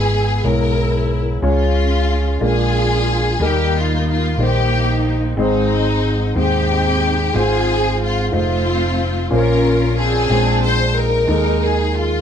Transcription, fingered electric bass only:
Already playing: G#1
0.44 B1
1.42 C#2
2.41 A#1
3.40 D#2
4.38 A#1
5.37 G#1
6.36 D#2
7.34 G#1
8.33 F1
9.32 A#1
10.30 A#1
11.28 D#2

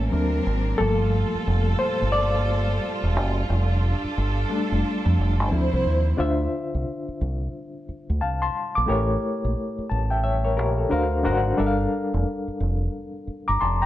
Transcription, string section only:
0.11 F#3 C4 D4 A#4
0.78 A#2 G3 F4 A4
3.48 D4 A4
5.50 F3 E4 C5

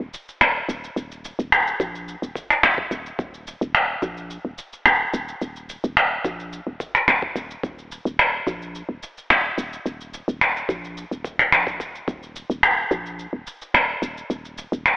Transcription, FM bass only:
0.00 D#1
0.41 D#1
0.69 D#1
0.96 D#1
1.39 D#1
1.80 A#1
2.22 D#1
2.63 D#1
2.91 D#1
3.19 D#1
3.61 D#1
4.02 A#1
4.45 D#1
4.86 D#1
5.14 D#1
5.42 D#1
5.84 D#1
6.25 A#1
6.67 D#1
7.08 D#1
7.36 D#1
7.64 D#1
8.05 D#1
8.47 A#1
8.89 D#1
9.30 D#1
9.58 D#1
9.86 D#1
10.28 D#1
10.69 A#1
11.11 D#1
11.52 A#1
11.80 D#1
12.08 D#1
12.50 D#1
12.91 A#1
13.33 D#1
13.74 D#1
14.02 D#1
14.30 D#1
14.72 D#1

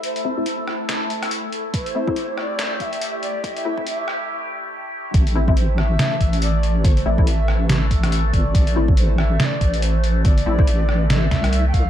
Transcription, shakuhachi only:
0.04 C5
1.74 B4
1.87 C5
2.37 E5
2.42 D5
2.80 E5 F5
3.22 D5
3.44 D#5
3.55 E5
5.57 C5
5.78 E5
6.42 D5
6.85 C5
7.06 D5
7.27 E5
8.33 D5
8.97 C5
9.18 E5
9.40 E5
9.44 D5
9.82 C5
10.25 D5
11.10 E5
11.68 G5
11.73 F5

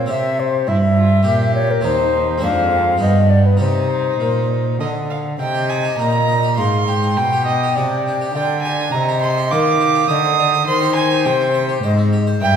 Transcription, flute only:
0.10 E5
0.40 C5
0.68 E5
1.55 C#5
1.71 A#4
1.85 C5
2.44 F5
3.02 D#5
3.30 D5
3.46 B4
3.60 C5
5.40 D#5
6.58 F5
6.88 G5
8.36 D5
8.92 D#5
9.51 F5
10.10 D#5
10.38 D5
10.67 C5
11.84 D#5
12.41 E5

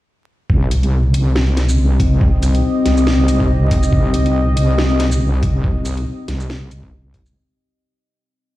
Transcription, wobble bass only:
0.50 C2
1.14 C2
1.78 C2
2.86 C2
3.28 C2
3.93 C2
4.57 C2
5.21 C2
6.28 C2
6.71 C2

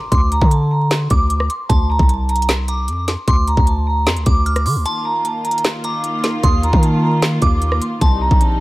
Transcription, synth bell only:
0.12 C6
1.11 D6
1.69 A5
2.68 A#5
3.28 C6
4.26 D6
4.46 F6
4.66 D6
4.86 A5
5.85 A#5
6.43 C6
7.42 D6
8.01 A5

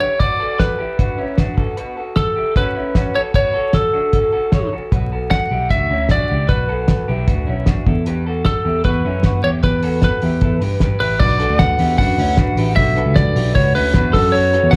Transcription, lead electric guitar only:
0.00 C#5
0.19 D5
0.59 B4
2.17 A4
2.57 B4
3.15 C#5
3.36 C#5
3.74 A4
5.31 F#5
5.71 E5
6.11 D5
6.49 B4
8.46 A4
8.85 B4
9.44 C#5
9.64 B4
10.04 B4
11.00 B4
11.20 D5
11.59 F#5
11.98 F#5
12.76 E5
13.16 D5
13.55 C#5
13.75 B4
14.13 A4
14.32 C#5
14.71 F#5

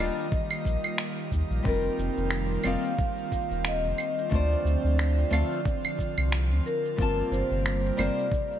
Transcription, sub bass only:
0.65 A#1
1.32 D#2
1.50 A#1
1.65 F1
1.99 F1
2.18 F1
2.65 F1
3.51 D#1
3.84 F1
4.32 D2
4.65 D2
4.84 D2
5.32 D2
6.18 C2
6.51 D2
6.98 G1
7.31 G1
7.51 G1
7.99 G1

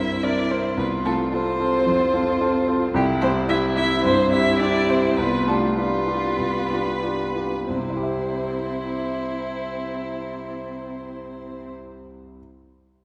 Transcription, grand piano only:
Already playing: C2 G2 C4 E4 A#4
0.23 C4 E4 A#4
0.51 C4 E4 A#4
0.77 C2
1.05 C4 F4 A4
1.33 C4 F4 A4
1.59 C4 F4 A4
1.86 F2
2.13 C4 F4 A4
2.41 C4 F4 A4
2.68 C4 F4 A4
2.94 C2
3.22 C4 E4 G4
3.49 C4 E4 G4
3.76 C4 E4 G4
4.04 G2
4.32 C4 E4 G4
4.60 C4 E4 G4
4.89 C4 E4 G4
5.18 C2
5.47 D4 F4 G4
5.77 D4 F4 G4
6.07 D4 F4 G4
6.38 C2
6.70 D4 F4 G4
7.02 D4 F4 G4
7.36 D4 F4 G4
7.69 C2
7.76 C3
7.83 C4
7.90 E4
7.97 G4
8.03 E5

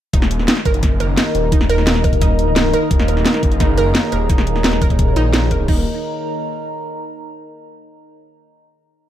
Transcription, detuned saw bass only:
0.13 D#1
0.65 F#1
1.35 D#1
1.87 D#1
2.91 D#1
3.43 F#1
4.12 D#1
4.64 D#1
4.99 D#1
5.16 A#1
5.68 D#1

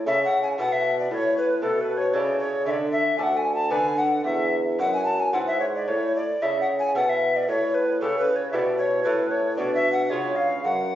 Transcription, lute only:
0.06 C#3 A3 E4 A4
0.58 B2 A3 E4 A4
1.11 A2
1.62 B2 E4 A4
2.13 C#3 E4 A4
2.66 D3
3.18 D2 D4 A4
3.70 D3 B3 B4
4.24 E2
4.78 F#2 G#3 E4 B4
5.33 G#2 G#3 E4 B4
5.88 A2
6.42 C#3 A3 E4 A4
6.95 B2 A3 E4 A4
7.49 A2
8.01 C#3 A3 E4 G4
8.53 B2 A3 E4 G4
9.05 A2 C#4 E4 A4
9.57 B2 B3 D4 F#4
10.11 C#3 G#3 B3 F4
10.64 F#2

